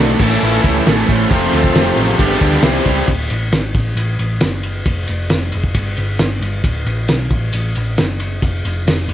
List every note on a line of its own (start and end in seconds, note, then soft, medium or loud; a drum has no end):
0.00 0.13 B1 loud
0.00 0.18 D2 medium
0.00 0.18 D2 loud
0.00 0.18 A2 medium
0.00 0.19 A2 loud
0.00 0.19 D3 medium
0.00 0.19 D3 loud
0.00 0.17 F#3 medium
0.00 0.17 A3 medium
0.00 0.20 A3 loud
0.00 0.20 A3 medium
0.00 0.18 D4 medium
0.00 0.21 D4 loud
0.00 0.20 F#4 loud
0.00 0.21 F#4 loud
0.19 0.35 A1 loud
0.19 0.40 A2 medium
0.19 0.87 A2 medium
0.19 0.31 E3 medium
0.19 0.84 E3 medium
0.19 0.32 A3 medium
0.19 0.31 C#4 medium
0.19 0.85 C#4 medium
0.19 0.63 A4 medium
0.19 kick loud
0.19 crash loud
0.23 0.85 A3 soft
0.23 0.30 E4 medium
0.31 0.53 A3 medium
0.31 0.52 C#4 medium
0.31 0.49 E4 medium
0.42 0.58 A1 loud
0.42 0.63 A2 loud
0.42 0.64 E3 loud
0.42 0.64 A3 loud
0.46 0.66 F4 loud
0.51 0.62 A3 medium
0.51 0.63 C#4 medium
0.51 0.63 E4 medium
0.62 0.80 C#2 loud
0.62 0.86 A2 loud
0.62 0.85 E3 medium
0.62 0.85 A3 medium
0.62 0.86 C#4 medium
0.62 0.86 E4 medium
0.62 0.87 A4 medium
0.62 kick medium
0.62 ride medium
0.68 0.88 G4 medium
0.85 1.02 A1 loud
0.85 1.08 A2 medium
0.85 1.06 E3 medium
0.85 1.08 A3 medium
0.85 1.09 C#4 medium
0.85 1.09 E4 medium
0.85 1.09 A4 loud
0.85 1.06 A4 medium
0.85 snare loud
0.85 ride loud
0.85 tambourine medium
1.05 1.24 A1 loud
1.05 1.30 A2 medium
1.05 1.30 E3 medium
1.05 1.30 A3 medium
1.05 1.29 A4 medium
1.05 1.08 B4 medium
1.05 kick medium
1.09 1.30 C#4 medium
1.09 1.31 E4 medium
1.09 1.52 C5 loud
1.09 ride medium
1.29 1.46 F1 loud
1.29 1.63 F2 medium
1.29 1.64 C3 medium
1.29 1.64 F3 medium
1.29 2.16 F3 medium
1.29 1.64 A3 loud
1.29 2.16 A3 medium
1.29 1.62 C4 loud
1.29 1.61 F4 loud
1.29 kick loud
1.29 ride medium
1.33 2.17 C4 medium
1.52 1.69 D2 loud
1.52 1.74 F2 medium
1.52 1.75 C3 medium
1.52 1.76 F3 loud
1.52 1.74 F3 medium
1.52 1.74 A3 medium
1.52 1.75 C4 medium
1.52 1.75 F4 medium
1.52 ride medium
1.56 1.76 A4 loud
1.62 1.74 C4 soft
1.62 1.74 F4 medium
1.62 kick medium
1.74 1.90 F1 loud
1.74 1.97 F2 medium
1.74 1.97 C3 medium
1.74 1.96 F3 loud
1.74 1.97 A3 loud
1.74 1.98 C4 loud
1.74 1.98 F4 loud
1.74 snare loud
1.74 ride loud
1.74 tambourine medium
1.78 1.98 G4 loud
1.97 2.12 A1 medium
1.97 2.19 F2 loud
1.97 2.19 C3 loud
1.97 2.08 F3 medium
1.97 2.09 A3 medium
1.97 2.19 B3 medium
1.97 2.08 C4 medium
1.97 2.07 F4 medium
1.97 2.84 G4 medium
1.97 ride medium
2.08 2.18 F3 soft
2.08 2.19 A3 medium
2.08 2.20 C4 medium
2.08 2.19 F4 medium
2.17 2.35 G1 loud
2.17 2.62 G2 medium
2.17 2.41 G2 loud
2.17 2.62 D3 loud
2.17 2.42 D3 loud
2.17 2.30 G3 medium
2.17 2.62 G3 medium
2.17 2.62 A3 medium
2.17 2.31 B3 loud
2.17 2.62 B3 medium
2.17 2.30 D4 medium
2.17 2.39 G4 loud
2.17 2.28 A4 medium
2.17 kick loud
2.17 ride loud
2.29 2.41 B3 soft
2.29 2.42 D4 soft
2.29 2.41 A4 medium
2.29 snare soft
2.41 2.57 D2 loud
2.41 2.63 G2 medium
2.41 2.64 D3 medium
2.41 2.62 G3 medium
2.41 2.63 B3 medium
2.41 2.64 D4 medium
2.41 2.62 G4 medium
2.41 2.65 A4 medium
2.41 kick medium
2.41 ride medium
2.53 snare soft
2.62 2.79 C2 medium
2.62 2.86 C3 loud
2.62 2.84 E3 medium
2.62 3.06 E3 medium
2.62 2.85 G3 medium
2.62 3.07 G3 soft
2.62 2.86 C4 loud
2.62 3.07 C4 medium
2.62 2.87 E4 medium
2.62 2.86 G4 loud
2.62 2.85 C5 loud
2.62 snare loud
2.62 ride loud
2.62 tambourine loud
2.85 3.01 C#2 loud
2.85 3.08 C3 medium
2.85 3.08 E3 medium
2.85 3.08 G3 medium
2.85 3.09 C4 medium
2.85 3.09 E4 medium
2.85 3.08 G4 medium
2.85 3.07 C5 medium
2.85 kick medium
2.85 ride medium
3.08 3.28 D1 loud
3.08 kick loud
3.08 ride loud
3.30 3.51 A1 medium
3.30 ride medium
3.52 3.72 G#1 medium
3.52 snare loud
3.52 ride medium
3.75 3.95 A1 medium
3.75 kick loud
3.75 ride medium
3.95 4.16 A1 medium
3.95 ride medium
4.19 4.39 A1 medium
4.19 ride medium
4.41 4.82 F#1 medium
4.41 snare loud
4.41 ride medium
4.63 ride medium
4.86 5.06 F1 medium
4.86 kick loud
4.86 ride medium
5.08 5.29 F1 medium
5.08 ride medium
5.30 5.51 F1 medium
5.30 snare loud
5.30 ride loud
5.52 5.74 F1 medium
5.52 ride medium
5.64 kick medium
5.74 5.95 G1 medium
5.74 kick medium
5.74 ride medium
5.97 6.18 G1 medium
5.97 ride medium
6.19 6.40 G1 medium
6.19 snare loud
6.19 ride medium
6.41 6.62 G1 medium
6.41 ride medium
6.64 6.84 D1 medium
6.64 kick loud
6.64 ride medium
6.86 7.07 A1 medium
6.86 ride medium
7.08 7.29 B1 medium
7.08 snare loud
7.08 ride medium
7.30 7.51 A1 medium
7.30 kick loud
7.30 ride medium
7.53 7.74 A1 medium
7.53 ride medium
7.75 7.96 A1 medium
7.75 ride medium
7.98 8.39 F#1 medium
7.98 snare loud
7.98 ride medium
8.20 ride medium
8.42 8.62 F1 medium
8.42 kick loud
8.42 ride medium
8.65 8.85 F1 medium
8.65 ride medium
8.87 9.07 F1 medium
8.87 snare loud
8.87 ride loud
9.08 9.14 F1 medium
9.08 ride medium